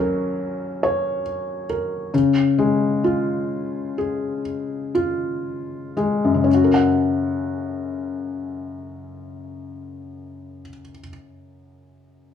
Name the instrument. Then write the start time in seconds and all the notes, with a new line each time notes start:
felt piano
Already playing: F#3 C#4 A#4
0.83 C#5
1.70 A#4
2.14 C#3
2.58 G#3
3.04 F4
3.98 G#4
4.95 F4
5.97 G#3
6.24 F#2
6.34 C#3
6.44 C#4
6.54 F#4
6.64 A#4
6.74 F#5